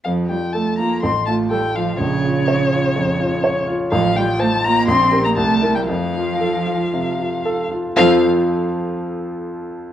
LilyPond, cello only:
\new Staff \with { instrumentName = "Cello" } { \clef bass \time 4/4 \key f \major \tempo 4 = 122 f8 g8 a8 bes8 c'8 a8 g8 f8 | des2.~ des8 r8 | f8 g8 a8 bes8 c'8. bes16 a8. g16 | f2.~ f8 r8 |
f8 r2. r8 | }